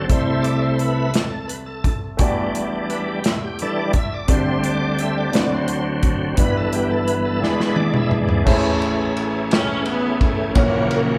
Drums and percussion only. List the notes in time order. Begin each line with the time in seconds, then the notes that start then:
0.10 kick, closed hi-hat
0.44 closed hi-hat
0.79 closed hi-hat
1.14 snare, closed hi-hat
1.49 closed hi-hat
1.84 kick, closed hi-hat
2.19 kick, closed hi-hat
2.55 closed hi-hat
2.90 closed hi-hat
3.24 snare, closed hi-hat
3.59 closed hi-hat
3.93 kick, closed hi-hat
4.28 kick, closed hi-hat
4.64 closed hi-hat
4.99 closed hi-hat
5.33 snare, closed hi-hat
5.68 closed hi-hat
6.03 kick, closed hi-hat
6.37 kick, closed hi-hat
6.73 closed hi-hat
7.08 closed hi-hat
7.44 snare
7.60 snare
7.76 high tom
7.94 mid tom
8.11 mid tom
8.29 floor tom
8.47 kick, crash
8.82 ride bell
9.17 ride bell
9.51 snare, ride bell
9.86 ride bell
10.21 kick, ride bell
10.55 kick, ride bell
10.91 ride bell